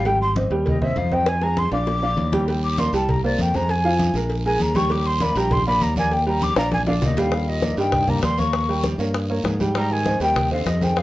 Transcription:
Already playing: G#1
0.05 G3 G4 G5, cowbell, high conga
0.21 C6, high conga
0.36 C4 C5 D#5, cowbell, high conga
0.50 D#2 G3 G4 G5, cowbell
0.66 D#5, cowbell, high conga, low conga
0.81 C4 C5 D#5 E5, high conga, low conga
0.96 F2 F5, cowbell, high conga
1.12 C4 C5 D#5 G5, high conga
1.27 G#5, cowbell, high bongo, high conga
1.42 G#3 G#4 G#5 A#5, high bongo, high conga
1.57 C6, cowbell, high bongo, high conga
1.72 A#1 D4 D5 F5 D6, high bongo, high conga
1.87 cowbell, low bongo, high conga
2.02 D4 D5 F5, high conga
2.17 D#2, cowbell, low bongo, high conga
2.32 G3 G4 G5, cowbell, low bongo, high conga
2.48 G3 G4 G5, cowbell, high conga, long guiro
2.63 D6, high conga
2.78 A#3 A#4 D5 C6, cowbell, high conga, short guiro
2.93 C2 G3 G4 G5 A5, cowbell, short guiro
3.09 A#5, cowbell, high conga, low conga, long guiro
3.24 A#3 A#4 C5 D5, high conga
3.38 F2 G5, cowbell, high conga, short guiro
3.54 G#3 G#4 C5 A#5, high conga, short guiro
3.69 G#5, cowbell, high conga, long guiro
3.84 F3 F4 F5, high conga
3.99 cowbell, high conga, short guiro
4.14 A#1 G#3 G#4 A#4, high conga, short guiro
4.29 cowbell, high conga, long guiro
4.45 G#3 G#4 A#4 G#5, high conga
4.59 D#2 A#5, cowbell, high conga, short guiro
4.75 G3 G4 G5 C#6, cowbell, high conga, short guiro
4.90 G3 G4 G5 D6, cowbell, high conga, long guiro
5.05 C6, high conga
5.20 A#3 A#4 D5 B5, cowbell, high conga, short guiro
5.35 A#1 G3 G4 G5 A#5, cowbell, short guiro
5.51 C6, cowbell, high conga, low conga, long guiro
5.66 A#3 A#4 D5 B5, high conga
5.80 D#2 A#5, cowbell, high conga, short guiro
5.96 A#3 A#4 D5 G#5, high conga, short guiro
6.11 G5, cowbell, high conga, long guiro
6.27 G3 G4 G5 A#5, high conga
6.42 D6, cowbell, high conga, short guiro
6.56 A#1 D4 D5 F5 A#5, high bongo, high conga, short guiro
6.72 G#5, cowbell, high bongo, high conga, long guiro
6.87 D3 D4 D5 F5, low bongo, high conga
7.01 D#2 A#2 D#5, cowbell, low bongo, low conga, short guiro
7.17 D3 G3 G4 F5 G5, cowbell, low bongo, low conga, short guiro
7.32 G3 G4 G5, high bongo, high conga, long guiro
7.48 A#2 D#5, high conga
7.62 A#3 A#4 D5, high bongo, high conga, short guiro
7.77 G2 D#3 G3 G4 G5, high bongo, short guiro
7.92 high bongo, high conga, low conga, long guiro
8.08 G3 A#3 A#4 D5 A#5, high bongo, high conga, low conga
8.23 D#2 G3 C6, high bongo, low bongo, high conga, short guiro
8.38 A#3 A#4 C#5 C#6, high bongo, high conga, short guiro
8.53 high bongo, high conga, long guiro
8.69 G3 G4 G5, high conga
8.84 high bongo, high conga, short guiro
8.98 G2 A#3 A#4 C#5, high bongo, high conga, short guiro
9.14 high bongo, high conga, long guiro
9.30 A#3 A#4 C#5, high bongo, high conga
9.44 G#2, high bongo, low bongo, high conga, short guiro
9.60 G3 G4 G5, high bongo, high conga, short guiro
9.75 G3 G4 G5 A#5, high bongo, high conga, long guiro
9.90 D#3 G#5, high conga
10.05 C4 C5 D#5, high bongo, high conga, short guiro
10.20 D#2 D#3 G3 G4 G5, high bongo, short guiro
10.36 high bongo, high conga, low conga, long guiro
10.51 D3 C4 C5 D#5 F5, high bongo, high conga
10.65 F2 C3 D#5, high bongo, low bongo, high conga, short guiro
10.81 D#3 G#3 G#4 C5 G5, high bongo, high conga, short guiro
10.96 C3 F5, high bongo, high conga, long guiro

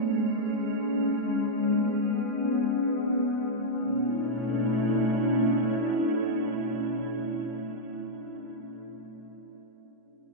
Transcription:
Already playing: G#3 A3 C#4
1.41 B3
3.80 B2 A3 C#4 D4 E4

